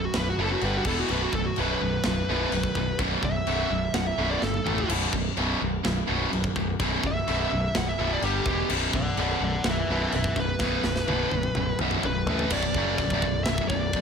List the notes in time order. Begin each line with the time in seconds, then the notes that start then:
Already playing: B1 F#2
0.05 F#4
0.14 B0 B1 F#2 B4, snare, china
0.29 F#4
0.38 F#1 B1 F#2 B2 A4
0.52 F#4
0.61 G1 G2 D3 G3 B4, china
0.77 F#4
0.85 E1 E2 B2 A4, kick, crash
0.89 E3
1.00 F#4
1.09 B0 B1 F#2 B2 B4, china
1.22 F#4
1.33 B0 B1 F#2 A4, kick
1.46 F#4
1.56 B0 B1 F#2 B2 B4, china
1.81 B0 B1 F#2
2.03 B0 B1 F#2, snare, china
2.29 B0 B1 F#2 B2
2.51 B0 B1 F#2, china
2.63 kick
2.75 B0 B1 F#2, kick
2.99 B0 B1 F#2 B2, kick, china
3.23 B0 B1 F#2 E5, kick
3.47 B0 B1 F#2 B2, china
3.70 B0 B1 F#2
3.93 B0 B1 F#2 F#5, snare, china
4.06 E5
4.18 B0 B1 F#2 B2
4.31 D5
4.42 G1 B1 F#2 A4, snare
4.54 high tom
4.65 A1 A2 E3 A3, mid tom
4.78 floor tom
4.89 B0 B1 F#2 B2, china, splash, crash
5.13 B0 B1 F#2, kick
5.37 B0 B1 F#2 B2, china
5.60 B0 B1 F#2
5.84 B0 B1 F#2, snare, china
6.07 B0 B1 F#2 B2
6.31 B0 B1 F#2, china
6.44 kick
6.56 B0 B1 F#2, kick
6.79 B0 B1 F#2 B2, kick, china
7.04 B0 B1 F#2 E5, kick
7.27 B0 B1 F#2 B2, china
7.51 B0 B1 F#2
7.75 B0 B1 F#2 F#5, snare, china
7.88 E5
7.98 B0 B1 F#2 B2
8.13 D5
8.22 G1 G2 D3 G3 G4, china
8.46 E1 E2 B2 E3, kick
8.69 B0 B1 F#2 B2, china, crash
8.93 B0 B1 F#2 D5 F#5, kick
9.17 B0 B1 F#2 B2 D5 F#5, china
9.40 B0 B1 F#2 D5
9.45 F#5
9.64 B0 B1 F#2, snare, china
9.69 B4 E5
9.88 B0 B1 F#2 B2 B4
9.93 E5
10.12 B0 B1 F#2 B4 E5, china
10.24 kick
10.36 B0 B1 F#2 B4, kick
10.59 B0 B1 F#2 B2, kick, snare
10.84 B0 B1 F#2, snare
10.96 snare
11.07 B0 B1 F#2 B2, high tom
11.31 B0 B1 F#2, high tom
11.43 mid tom
11.55 B0 B1 F#2, mid tom
11.79 B0 B1 F#2 B2, mid tom
11.91 mid tom
12.03 B0 B1 F#2 B4, mid tom
12.27 A1 A2 E3 A3, floor tom
12.39 floor tom
12.50 B0 B1 F#2 D5, kick, crash, china
12.62 B0 B1 F#2, kick
12.74 F#1 F#2 C#3 F#3, kick
12.98 B0 B1 D5, kick, china
13.02 F#2
13.10 B0 B1 F#2, kick
13.22 B0 B1 F#2, kick
13.44 B0 E5, snare, china
13.49 B1 F#2
13.58 B0 B1, kick
13.62 F#2
13.68 B0 B1 F#2 D5, kick
13.93 B0 B1 F#2, kick, china